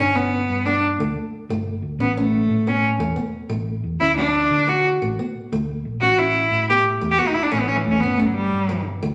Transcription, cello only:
0.00 0.16 C#4 medium
0.15 0.67 B3 medium
0.65 0.83 D4 medium
2.01 2.16 B3 medium
2.18 2.69 A3 medium
2.68 2.84 C#4 medium
4.00 4.16 E4 loud
4.16 4.70 D4 loud
4.69 4.85 F#4 medium
6.01 6.20 F#4 medium
6.18 6.68 E4 medium
6.69 6.79 G4 medium
7.11 7.20 G4 medium
7.18 7.29 F#4 medium
7.28 7.35 D#4 medium
7.34 7.44 E4 medium
7.43 7.53 D4 medium
7.51 7.61 C#4 medium
7.60 7.69 B3 medium
7.68 7.77 C#4 medium
7.76 7.86 E3 medium
7.84 7.93 A3 medium
7.91 8.02 C#4 medium
8.00 8.19 B3 medium
8.17 8.28 A3 medium
8.27 8.34 F#3 medium
8.35 8.82 G3 medium

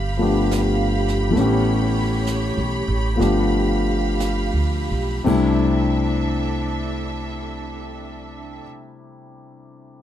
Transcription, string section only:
0.00 5.22 G4 medium
0.00 1.35 F5 medium
0.00 5.21 B5 medium
1.33 3.15 C#5 medium
3.19 5.23 F5 medium
5.29 8.63 D4 medium
5.29 8.61 A4 soft
5.29 8.64 E5 medium

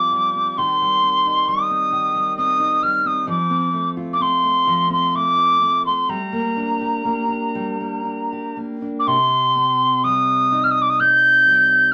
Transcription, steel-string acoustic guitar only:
0.00 0.57 F3 soft
0.00 0.11 G3 soft
0.00 0.35 C4 soft
0.00 0.66 F4 soft
0.12 0.81 G3 soft
0.35 1.02 C4 soft
0.58 1.91 D#3 medium
0.81 1.46 G3 soft
1.03 1.70 C4 soft
1.26 2.58 D#4 soft
1.47 2.13 G3 soft
1.70 2.37 C4 soft
1.92 3.27 D#3 medium
2.14 2.81 G3 soft
2.38 3.04 C4 soft
2.60 3.36 D#4 soft
2.82 3.36 G3 soft
3.05 3.50 C4 soft
3.27 4.66 F3 medium
3.50 4.19 C4 soft
3.73 4.42 A3 soft
3.97 5.37 F4 medium
4.20 4.89 C4 medium
4.43 5.13 A3 soft
4.67 6.08 F3 medium
4.90 5.61 C4 soft
5.15 5.85 A3 medium
5.38 6.18 F4 medium
5.62 6.18 C4 soft
5.86 6.19 A3 soft
6.09 7.55 G3 medium
6.33 7.04 A#3 soft
6.56 7.27 D4 soft
6.81 8.32 G4 soft
7.05 7.79 A#3 soft
7.28 8.04 D4 soft
7.55 10.04 G3 soft
7.80 8.56 A#3 soft
8.05 8.81 D4 soft
8.32 10.52 G4 soft
8.57 9.16 A#3 soft
8.82 9.16 D4 soft
9.07 11.93 C3 medium
9.56 11.00 C4 soft
10.04 11.45 G3 soft
10.52 11.94 D#4 soft
11.00 11.94 C4 soft
11.46 11.94 G3 soft

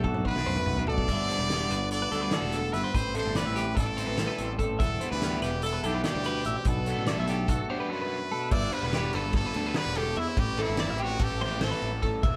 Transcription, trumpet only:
0.27 0.84 B4 loud
0.90 1.88 D5 loud
1.92 2.36 D5 loud
2.34 2.75 A4 loud
2.73 2.97 B4 loud
2.95 3.16 C5 loud
3.17 3.38 C5 medium
3.37 3.78 B4 loud
3.78 4.57 A4 loud
4.80 5.09 A4 loud
5.11 5.40 B4 medium
5.42 5.62 G4 medium
5.64 5.87 A4 loud
5.86 6.03 G4 medium
6.04 6.69 G4 loud
6.68 7.68 A4 medium
7.68 7.91 G4 medium
7.90 8.53 B4 medium
8.52 8.74 D5 loud
8.73 9.15 B4 loud
9.14 9.35 A4 loud
9.35 9.79 A4 loud
9.78 9.98 B4 loud
9.97 10.21 G4 medium
10.19 10.40 E4 medium
10.39 10.63 G4 medium
10.62 11.04 E4 loud
11.03 11.25 F#4 medium
11.23 11.42 G4 loud
11.44 11.62 G4 medium
11.64 12.06 A4 loud

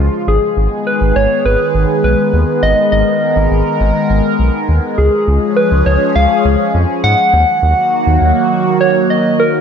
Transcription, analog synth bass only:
0.28 0.38 G#1 loud
0.57 0.68 G#1 loud
1.01 1.12 G#1 medium
1.16 1.27 G#1 loud
1.45 1.56 G#1 loud
1.74 1.85 G#1 loud
2.04 2.15 B1 medium
2.33 2.44 D#2 loud
2.63 2.74 G#1 loud
2.92 3.03 G#1 medium
3.36 3.47 G#1 medium
3.51 3.62 G#1 loud
3.80 3.91 G#1 loud
4.10 4.21 G#1 loud
4.39 4.50 B1 medium
4.69 4.80 D#2 medium
4.98 5.09 C#2 loud
5.28 5.38 C#2 loud
5.71 5.82 C#2 medium
5.86 5.97 C#2 loud
6.16 6.27 C#2 loud
6.45 6.56 C#2 loud
6.74 6.85 F2 medium
7.04 7.15 G#2 medium
7.33 7.44 D#2 loud
7.63 7.74 D#2 loud
8.07 8.18 D#2 loud
8.21 8.32 D#2 loud

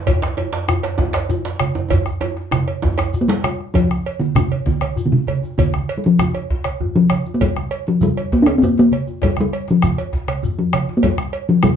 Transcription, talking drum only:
3.21 3.30 A#3 medium
3.28 3.75 G3 loud
3.74 4.21 F3 medium
4.19 4.35 D3 medium
4.36 4.64 C3 medium
4.66 5.06 D3 medium
5.06 5.14 D3 medium
5.12 5.59 C3 medium
5.58 5.99 D3 medium
5.97 6.08 G3 medium
6.06 6.39 F3 medium
6.96 7.32 F3 medium
7.34 7.43 A#3 medium
7.41 7.71 G3 medium
7.88 8.04 F3 medium
8.03 8.35 G3 medium
8.33 8.44 A#3 medium
8.42 8.49 D4 medium
8.47 8.58 C4 medium
8.58 8.65 C4 medium
8.64 8.78 A#3 medium
8.79 9.26 A#3 medium
9.24 9.38 G3 medium
9.40 9.72 G3 medium
9.71 10.30 F3 medium
10.59 10.99 F3 medium
10.97 11.05 A#3 medium
11.04 11.48 G3 medium
11.49 11.65 F3 medium
11.63 11.76 G3 medium

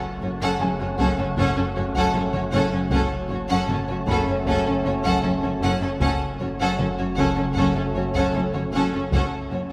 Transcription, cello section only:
0.21 0.29 F#2 medium
0.41 0.49 F#2 medium
0.60 0.68 F#2 medium
0.80 0.88 F#2 medium
0.99 1.07 F#2 loud
1.19 1.26 F#2 medium
1.39 1.46 F#2 medium
1.57 1.65 F#2 medium
1.76 1.84 F#2 medium
1.95 2.03 F#2 loud
2.15 2.22 F#2 medium
2.33 2.41 F#2 medium
2.52 2.60 F#2 medium
2.72 2.80 F#2 medium
2.91 2.99 F#2 medium
3.31 3.39 F#2 medium
3.51 3.59 F#2 loud
3.70 3.78 F#2 medium
3.90 3.98 F#2 medium
4.09 4.16 F#2 loud
4.29 4.36 F#2 medium
4.48 4.55 F#2 medium
4.67 4.75 F#2 medium
4.86 4.94 F#2 medium
5.06 5.14 F#2 medium
5.25 5.33 F#2 medium
5.44 5.52 F#2 medium
5.64 5.71 F#2 loud
5.82 5.90 F#2 medium
6.02 6.10 F#2 medium
6.41 6.49 F#2 medium
6.60 6.68 F#2 medium
6.79 6.87 F#2 medium
6.99 7.07 F#2 medium
7.18 7.26 F#2 medium
7.37 7.45 F#2 medium
7.57 7.64 F#2 medium
7.76 7.84 F#2 medium
7.96 8.04 F#2 medium
8.16 8.24 F#2 medium
8.35 8.43 F#2 medium
8.55 8.63 F#2 medium
8.75 8.82 F#2 medium
8.95 9.02 F#2 medium
9.14 9.21 F#2 medium
9.53 9.61 F#2 medium

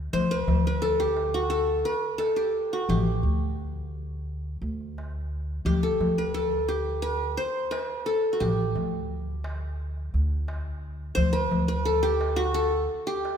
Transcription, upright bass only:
0.13 0.46 D2 medium
0.47 1.82 D2 medium
2.89 3.21 A1 medium
3.23 4.58 D2 medium
4.62 5.62 D2 medium
5.65 5.98 D2 medium
6.00 7.35 D2 medium
8.41 8.74 A1 medium
8.76 10.10 D2 medium
10.14 11.14 D2 medium
11.17 11.49 D2 medium
11.51 12.86 D2 medium

